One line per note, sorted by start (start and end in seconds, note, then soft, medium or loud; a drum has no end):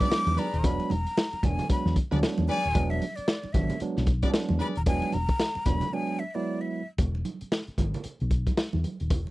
0.00 0.47 F#3 medium
0.00 0.47 G#3 medium
0.00 0.47 B3 medium
0.00 0.47 D4 medium
0.00 0.08 G#4 medium
0.00 0.08 B4 medium
0.00 0.08 D5 medium
0.00 0.40 D6 loud
0.00 kick medium
0.00 closed hi-hat medium
0.00 high conga medium
0.12 snare loud
0.27 0.36 E2 medium
0.27 closed hi-hat soft
0.27 muted conga soft
0.27 high conga medium
0.37 0.74 G#4 medium
0.37 0.73 B4 loud
0.37 0.74 D5 medium
0.37 0.67 A#5 loud
0.37 closed hi-hat medium
0.37 high conga medium
0.53 0.64 D#1 medium
0.53 closed hi-hat soft
0.64 0.78 E1 loud
0.64 0.93 F#3 loud
0.64 0.93 G#3 medium
0.64 0.93 B3 medium
0.64 0.93 D4 loud
0.64 0.93 B5 loud
0.64 kick loud
0.64 closed hi-hat medium
0.64 muted conga soft
0.80 closed hi-hat soft
0.80 muted conga soft
0.90 1.05 E1 medium
0.90 1.47 A#5 loud
0.90 closed hi-hat medium
0.90 high conga medium
1.06 1.11 B3 soft
1.06 1.12 D4 soft
1.06 closed hi-hat medium
1.17 snare loud
1.17 muted conga soft
1.32 muted fingered electric bass stroke soft
1.32 closed hi-hat soft
1.32 muted conga soft
1.43 1.57 E1 medium
1.43 1.64 F#3 medium
1.43 1.64 G#3 medium
1.43 1.64 B3 medium
1.43 1.64 D4 medium
1.43 1.71 G#5 medium
1.43 kick medium
1.43 closed hi-hat medium
1.43 high conga medium
1.43 low conga medium
1.59 closed hi-hat medium
1.59 low conga medium
1.69 1.98 F#3 medium
1.69 1.98 G#3 medium
1.69 1.98 B3 medium
1.69 1.98 D4 medium
1.69 1.95 B5 medium
1.69 muted fingered electric bass stroke medium
1.69 kick loud
1.69 closed hi-hat medium
1.69 muted conga soft
1.86 1.95 E2 loud
1.86 snare soft
1.96 kick medium
1.96 closed hi-hat medium
2.11 2.22 D2 loud
2.11 2.58 F#3 medium
2.11 2.58 G#3 medium
2.11 2.58 B3 medium
2.11 2.58 D4 loud
2.11 2.18 G#4 medium
2.11 2.18 B4 medium
2.11 2.18 D5 medium
2.11 closed hi-hat medium
2.11 high conga medium
2.23 snare loud
2.23 muted conga soft
2.38 2.48 E2 medium
2.38 closed hi-hat soft
2.38 muted conga soft
2.38 high conga medium
2.49 2.85 G#4 medium
2.49 2.85 B4 medium
2.49 2.85 D5 loud
2.49 2.92 G#5 loud
2.49 closed hi-hat medium
2.49 high conga medium
2.65 2.74 D#1 medium
2.65 closed hi-hat soft
2.75 2.99 E1 loud
2.75 3.04 F#3 loud
2.75 3.04 G#3 loud
2.75 3.04 B3 loud
2.75 3.04 D4 loud
2.75 kick loud
2.75 closed hi-hat medium
2.90 3.17 E5 medium
2.90 muted conga soft
3.01 closed hi-hat medium
3.01 high conga medium
3.16 3.23 B3 soft
3.16 3.23 D4 soft
3.16 3.54 D5 medium
3.16 muted fingered electric bass stroke soft
3.16 closed hi-hat medium
3.28 snare loud
3.43 muted fingered electric bass stroke soft
3.43 muted conga soft
3.53 3.68 G#1 loud
3.53 3.75 F#3 medium
3.53 3.75 G#3 medium
3.53 3.75 B3 medium
3.53 3.75 D4 medium
3.53 3.80 E5 medium
3.53 kick medium
3.53 closed hi-hat medium
3.53 high conga medium
3.53 low conga medium
3.70 closed hi-hat medium
3.70 low conga medium
3.80 4.10 F#3 medium
3.80 4.10 G#3 medium
3.80 4.10 B3 medium
3.80 4.10 D4 medium
3.80 muted fingered electric bass stroke medium
3.80 closed hi-hat medium
3.97 4.21 B1 medium
3.97 snare soft
4.07 kick medium
4.07 closed hi-hat medium
4.22 4.70 F#3 medium
4.22 4.70 G#3 medium
4.22 4.70 B3 medium
4.22 4.28 C#4 medium
4.22 4.30 G#4 medium
4.22 4.30 B4 medium
4.22 4.30 D5 medium
4.22 kick medium
4.22 closed hi-hat medium
4.22 high conga medium
4.30 4.73 D4 loud
4.30 snare loud
4.49 4.59 E2 medium
4.49 muted conga soft
4.49 high conga medium
4.59 4.77 G#4 medium
4.59 4.77 B4 medium
4.59 4.77 D5 medium
4.59 4.67 B5 loud
4.59 closed hi-hat medium
4.59 high conga medium
4.75 4.86 D#1 medium
4.75 4.82 A#5 medium
4.75 closed hi-hat soft
4.86 5.01 E1 loud
4.86 5.16 F#3 loud
4.86 5.16 G#3 medium
4.86 5.16 B3 loud
4.86 5.16 D4 loud
4.86 5.15 G#5 loud
4.86 kick loud
4.86 closed hi-hat loud
4.86 muted conga soft
5.02 closed hi-hat soft
5.02 muted conga soft
5.12 5.28 E1 medium
5.12 5.67 A#5 loud
5.12 closed hi-hat medium
5.12 high conga medium
5.28 5.34 B3 soft
5.28 5.34 D4 soft
5.28 kick loud
5.28 closed hi-hat soft
5.39 snare loud
5.39 muted conga soft
5.55 muted fingered electric bass stroke soft
5.55 muted conga soft
5.66 5.80 E1 medium
5.66 5.87 F#3 medium
5.66 5.87 G#3 medium
5.66 5.87 B3 medium
5.66 5.87 D4 medium
5.66 5.95 B5 loud
5.66 kick medium
5.66 closed hi-hat medium
5.66 high conga medium
5.66 low conga medium
5.81 closed hi-hat medium
5.81 low conga medium
5.93 6.22 F#3 medium
5.93 6.22 G#3 medium
5.93 6.22 B3 medium
5.93 6.22 D4 medium
5.93 6.21 G#5 medium
6.19 6.36 E5 medium
6.35 6.81 F#3 medium
6.35 6.81 G#3 medium
6.35 6.81 B3 medium
6.35 6.81 E4 medium
6.35 6.63 D5 medium
6.61 6.88 E5 medium
6.98 7.22 E1 loud
6.98 kick loud
6.98 closed hi-hat medium
6.98 muted conga soft
6.98 low conga medium
7.15 muted conga soft
7.25 closed hi-hat medium
7.25 high conga medium
7.41 muted fingered electric bass stroke soft
7.41 closed hi-hat soft
7.52 snare loud
7.52 muted conga soft
7.67 muted fingered electric bass stroke soft
7.67 closed hi-hat soft
7.78 7.92 G#1 medium
7.78 kick medium
7.78 closed hi-hat medium
7.78 high conga medium
7.78 low conga medium
7.94 closed hi-hat medium
7.94 low conga medium
8.04 muted fingered electric bass stroke soft
8.04 closed hi-hat medium
8.20 8.45 B1 medium
8.20 closed hi-hat soft
8.31 kick medium
8.31 closed hi-hat medium
8.46 kick medium
8.46 closed hi-hat soft
8.46 high conga medium
8.57 snare loud
8.57 muted conga soft
8.73 8.83 E2 medium
8.73 muted conga soft
8.73 high conga medium
8.84 closed hi-hat medium
8.84 high conga medium
9.00 9.10 D#1 medium
9.00 closed hi-hat soft
9.10 9.25 E1 loud
9.10 kick loud
9.10 closed hi-hat loud
9.10 muted conga soft
9.10 low conga medium
9.27 muted conga soft